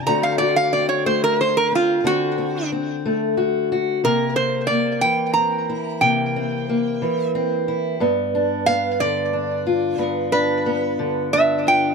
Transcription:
<<
  \new Staff \with { instrumentName = "Resonator guitar played with a steel bar" } { \time 12/8 \key c \major \tempo 4. = 60 bes''16 f''16 d''16 f''16 d''16 cis''16 c''16 bes'16 c''16 bes'16 f'8 fis'4 r2 | bes'8 c''8 d''8 g''8 bes''4 g''2 r4 | r4 f''8 d''4. bes'8 b'4 r8 e''8 g''8 | }
  \new Staff \with { instrumentName = "Steel-string acoustic guitar" } { \time 12/8 \key c \major << { <a c' fis'>8 fis'8 c'4. c'8 c'8 c'8 c'4 fis'8 fis'8 | bes8 c'8 bes4 c'8 e'8 bes8 c'8 bes4 c'8 e'8 | b8 d'8 b4 d'8 f'8 b8 d'8 b4 d'8 f'8 | } \\ { d4. a4. d4. a4. | c4. e4. c4. e4. | g,4. d4. g,4. d4. | } >> }
>>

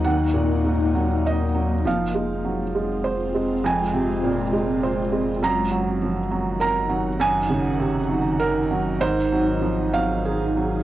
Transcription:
<<
  \new Staff \with { instrumentName = "Ambient pad" } { \time 3/4 \key ges \lydian \tempo 4 = 100 << { ges''2. | f'2.~ | f'2. | ges''2.~ |
ges''2. | aes'2. | } \\ { <bes ees'>2. | <aes c'>2.~ | <aes c'>2. | <ees ees'>2.~ |
<ees ees'>2.~ | <ees ees'>2. | } >> }
  \new Staff \with { instrumentName = "Felt piano" } { \time 3/4 \key ges \lydian ges''4. r8 ees''4 | f''2. | aes''4. r4. | bes''2 bes''4 |
aes''2 bes'4 | c''4. f''4. | }
  \new Staff \with { instrumentName = "Felt piano" } { \clef bass \time 3/4 \key ges \lydian <ees, ges>8 bes,8 aes,8 ges8 ees'8 ges8 | f8 aes8 ges8 aes8 c''8 aes8 | f,8 c8 bes,8 aes8 c''8 aes8 | ges,8 ges8 f8 ges8 bes'8 ges8 |
ges,8 des8 c8 ges4 ges8 | aes,8 ges8 f8 ges8 aes'8 ges8 | }
  \new Staff \with { instrumentName = "Sub bass" } { \clef bass \time 3/4 \key ges \lydian ees,2. | f,,2.~ | f,,2. | ges,,2.~ |
ges,,2. | aes,,2. | }
>>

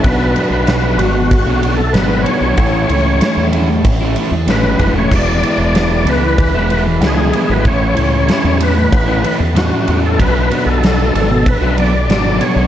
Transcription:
<<
  \new Staff \with { instrumentName = "Tonewheel organ" } { \time 4/4 \key b \dorian \tempo 4 = 95 b'8. b'8. fis'4~ fis'16 a'16 b'8 cis''8~ | cis''4. r4. b'8. cis''16 | d''8. d''8. b'4~ b'16 r16 gis'8. b'16 | cis''8. cis''8. b'4~ b'16 r16 fis'8. a'16 |
b'8. a'8. a'8 b'8 d''4 cis''8 | }
  \new Staff \with { instrumentName = "Overdriven electric guitar" } { \time 4/4 \key b \dorian <b, fis b d' fis'>8 <fis b d' fis'>8 <b, fis b d' fis'>8 <fis b d' fis'>8. <b d' fis'>16 <fis b d' fis'>8 <b, fis b d' fis'>8 <fis b d' fis'>16 <b d' fis'>16 | <a, e a cis' e'>8 <e a cis' e'>8 <a, e a cis' e'>8 <e a cis' e'>8. <a cis' e'>16 <e a cis' e'>8 <a, e a cis' e'>8 <e a cis' e'>16 <a cis' e'>16 | <e gis b e'>8 <e gis b e'>8 <e gis b e'>8 <e gis b e'>8. <gis b e'>16 <e gis b e'>8 <e gis b e'>8 <e gis b e'>16 <gis b e'>16 | <a, e a cis' e'>8 <e a cis' e'>8 <a, e a cis' e'>8 <e a cis' e'>8. <a cis' e'>16 <e a cis' e'>8 <a, e a cis' e'>8 <e a cis' e'>16 <a cis' e'>16 |
<b, fis b d' fis'>8 <fis b d' fis'>8 <b, fis b d' fis'>8 <fis b d' fis'>8. <b d' fis'>16 <fis b d' fis'>8 <b, fis b d' fis'>8 <fis b d' fis'>16 <b d' fis'>16 | }
  \new Staff \with { instrumentName = "Fingered electric bass" } { \clef bass \time 4/4 \key b \dorian b,,8 r16 b,,8. gis,,8. b,,8. gis,,8 r16 b,,16 | a,,8 cis,8 r16 e,8. a,,8 r16 e,16 a,,16 gis,,16 fis,,16 e,,16 | e,,8 r16 e,,8. cis,8. e,,8. cis,8 r16 gis,,16 | a,,8 cis,8 r16 e,8. a,,8 r16 e,8 r16 e,8 |
b,,8 r16 b,,8. gis,,8. b,,8. gis,,8 r16 b,,16 | }
  \new DrumStaff \with { instrumentName = "Drums" } \drummode { \time 4/4 <bd cymr>8 cymr8 <cymr sn>8 cymr8 <bd cymr>8 cymr8 <cymr sn>8 cymr8 | <bd cymr>8 cymr8 <cymr sn>8 cymr8 <bd cymr>8 cymr8 <cymr sn>8 <bd cymr>8 | <cymc bd>8 cymr8 <cymr sn>8 cymr8 <bd cymr>8 cymr8 <cymr sn>8 cymr8 | <bd cymr>8 cymr8 <cymr sn>8 cymr8 <bd cymr>8 cymr8 <cymr sn>8 cymr8 |
<bd cymr>8 cymr8 <cymr sn>8 cymr8 <bd cymr>8 cymr8 <cymr sn>8 cymr8 | }
>>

